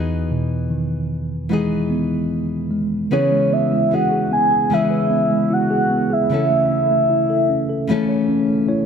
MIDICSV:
0, 0, Header, 1, 4, 480
1, 0, Start_track
1, 0, Tempo, 796813
1, 1878, Time_signature, 4, 2, 24, 8
1, 5335, End_track
2, 0, Start_track
2, 0, Title_t, "Soft synth lead"
2, 0, Program_c, 0, 80
2, 1884, Note_on_c, 0, 73, 80
2, 2127, Note_on_c, 0, 76, 79
2, 2136, Note_off_c, 0, 73, 0
2, 2373, Note_on_c, 0, 78, 84
2, 2382, Note_off_c, 0, 76, 0
2, 2604, Note_off_c, 0, 78, 0
2, 2608, Note_on_c, 0, 80, 91
2, 2851, Note_on_c, 0, 76, 92
2, 2860, Note_off_c, 0, 80, 0
2, 3332, Note_on_c, 0, 78, 98
2, 3341, Note_off_c, 0, 76, 0
2, 3692, Note_on_c, 0, 76, 98
2, 3701, Note_off_c, 0, 78, 0
2, 5116, Note_off_c, 0, 76, 0
2, 5335, End_track
3, 0, Start_track
3, 0, Title_t, "Nylon-string guitar"
3, 0, Program_c, 1, 24
3, 0, Note_on_c, 1, 52, 60
3, 0, Note_on_c, 1, 59, 63
3, 0, Note_on_c, 1, 63, 59
3, 0, Note_on_c, 1, 68, 64
3, 896, Note_off_c, 1, 52, 0
3, 899, Note_on_c, 1, 52, 59
3, 906, Note_off_c, 1, 59, 0
3, 906, Note_off_c, 1, 63, 0
3, 908, Note_on_c, 1, 59, 63
3, 914, Note_on_c, 1, 63, 65
3, 919, Note_off_c, 1, 68, 0
3, 922, Note_on_c, 1, 68, 78
3, 1872, Note_off_c, 1, 52, 0
3, 1872, Note_on_c, 1, 49, 59
3, 1875, Note_off_c, 1, 59, 0
3, 1875, Note_on_c, 1, 52, 65
3, 1877, Note_on_c, 1, 59, 60
3, 1878, Note_off_c, 1, 63, 0
3, 1881, Note_off_c, 1, 68, 0
3, 1881, Note_on_c, 1, 61, 60
3, 1883, Note_on_c, 1, 68, 62
3, 2353, Note_off_c, 1, 52, 0
3, 2353, Note_off_c, 1, 59, 0
3, 2355, Note_on_c, 1, 52, 44
3, 2358, Note_off_c, 1, 49, 0
3, 2360, Note_on_c, 1, 59, 43
3, 2362, Note_off_c, 1, 68, 0
3, 2363, Note_off_c, 1, 61, 0
3, 2365, Note_on_c, 1, 61, 43
3, 2369, Note_on_c, 1, 68, 45
3, 2831, Note_on_c, 1, 49, 62
3, 2836, Note_off_c, 1, 52, 0
3, 2837, Note_off_c, 1, 59, 0
3, 2839, Note_on_c, 1, 52, 66
3, 2845, Note_off_c, 1, 68, 0
3, 2845, Note_on_c, 1, 59, 60
3, 2846, Note_off_c, 1, 61, 0
3, 2849, Note_on_c, 1, 61, 62
3, 2855, Note_on_c, 1, 68, 66
3, 3785, Note_off_c, 1, 49, 0
3, 3792, Note_on_c, 1, 49, 55
3, 3796, Note_off_c, 1, 52, 0
3, 3799, Note_on_c, 1, 52, 63
3, 3803, Note_off_c, 1, 59, 0
3, 3806, Note_on_c, 1, 57, 60
3, 3808, Note_off_c, 1, 61, 0
3, 3808, Note_off_c, 1, 68, 0
3, 3810, Note_on_c, 1, 61, 65
3, 3816, Note_on_c, 1, 69, 63
3, 4736, Note_off_c, 1, 49, 0
3, 4744, Note_on_c, 1, 49, 77
3, 4749, Note_off_c, 1, 52, 0
3, 4750, Note_off_c, 1, 57, 0
3, 4752, Note_on_c, 1, 52, 83
3, 4757, Note_on_c, 1, 57, 80
3, 4760, Note_off_c, 1, 69, 0
3, 4761, Note_off_c, 1, 61, 0
3, 4763, Note_on_c, 1, 61, 83
3, 4768, Note_on_c, 1, 69, 79
3, 5335, Note_off_c, 1, 49, 0
3, 5335, Note_off_c, 1, 52, 0
3, 5335, Note_off_c, 1, 57, 0
3, 5335, Note_off_c, 1, 61, 0
3, 5335, Note_off_c, 1, 69, 0
3, 5335, End_track
4, 0, Start_track
4, 0, Title_t, "Tine electric piano"
4, 0, Program_c, 2, 4
4, 0, Note_on_c, 2, 40, 48
4, 44, Control_c, 2, 64, 127
4, 188, Note_on_c, 2, 47, 41
4, 424, Note_on_c, 2, 51, 40
4, 902, Note_on_c, 2, 56, 44
4, 1126, Note_off_c, 2, 47, 0
4, 1146, Note_on_c, 2, 59, 42
4, 1368, Note_off_c, 2, 51, 0
4, 1625, Note_off_c, 2, 56, 0
4, 1632, Note_on_c, 2, 56, 41
4, 1854, Note_off_c, 2, 40, 0
4, 1855, Note_off_c, 2, 59, 0
4, 1869, Note_off_c, 2, 56, 0
4, 1873, Note_on_c, 2, 49, 50
4, 1887, Control_c, 2, 64, 0
4, 1979, Control_c, 2, 64, 127
4, 1997, Note_on_c, 2, 56, 43
4, 2123, Note_on_c, 2, 59, 41
4, 2234, Note_off_c, 2, 56, 0
4, 2242, Note_on_c, 2, 56, 35
4, 2359, Note_on_c, 2, 64, 44
4, 2481, Note_on_c, 2, 68, 44
4, 2593, Note_off_c, 2, 59, 0
4, 2600, Note_on_c, 2, 59, 39
4, 2709, Note_off_c, 2, 68, 0
4, 2717, Note_on_c, 2, 68, 47
4, 2829, Note_off_c, 2, 56, 0
4, 2836, Note_on_c, 2, 56, 53
4, 2954, Note_on_c, 2, 71, 43
4, 3066, Note_off_c, 2, 59, 0
4, 3074, Note_on_c, 2, 59, 46
4, 3188, Note_off_c, 2, 56, 0
4, 3195, Note_on_c, 2, 56, 43
4, 3295, Note_off_c, 2, 64, 0
4, 3315, Note_on_c, 2, 64, 49
4, 3430, Note_off_c, 2, 68, 0
4, 3437, Note_on_c, 2, 68, 49
4, 3550, Note_off_c, 2, 59, 0
4, 3557, Note_on_c, 2, 59, 44
4, 3669, Note_off_c, 2, 68, 0
4, 3676, Note_on_c, 2, 68, 46
4, 3774, Note_off_c, 2, 49, 0
4, 3774, Note_off_c, 2, 71, 0
4, 3780, Note_off_c, 2, 56, 0
4, 3783, Note_off_c, 2, 64, 0
4, 3791, Note_off_c, 2, 59, 0
4, 3794, Note_on_c, 2, 49, 51
4, 3795, Note_off_c, 2, 68, 0
4, 3809, Control_c, 2, 64, 0
4, 3907, Control_c, 2, 64, 127
4, 3915, Note_on_c, 2, 57, 46
4, 4034, Note_on_c, 2, 61, 46
4, 4150, Note_off_c, 2, 57, 0
4, 4158, Note_on_c, 2, 57, 39
4, 4276, Note_on_c, 2, 64, 50
4, 4397, Note_on_c, 2, 69, 45
4, 4508, Note_off_c, 2, 61, 0
4, 4515, Note_on_c, 2, 61, 41
4, 4628, Note_off_c, 2, 69, 0
4, 4635, Note_on_c, 2, 69, 45
4, 4747, Note_off_c, 2, 57, 0
4, 4754, Note_on_c, 2, 57, 55
4, 4872, Note_on_c, 2, 73, 44
4, 4985, Note_off_c, 2, 61, 0
4, 4992, Note_on_c, 2, 61, 45
4, 5107, Note_off_c, 2, 57, 0
4, 5114, Note_on_c, 2, 57, 44
4, 5206, Note_off_c, 2, 64, 0
4, 5224, Note_off_c, 2, 73, 0
4, 5231, Note_on_c, 2, 73, 63
4, 5232, Note_on_c, 2, 64, 48
4, 5335, Note_off_c, 2, 49, 0
4, 5335, Note_off_c, 2, 57, 0
4, 5335, Note_off_c, 2, 61, 0
4, 5335, Note_off_c, 2, 64, 0
4, 5335, Note_off_c, 2, 69, 0
4, 5335, Note_off_c, 2, 73, 0
4, 5335, End_track
0, 0, End_of_file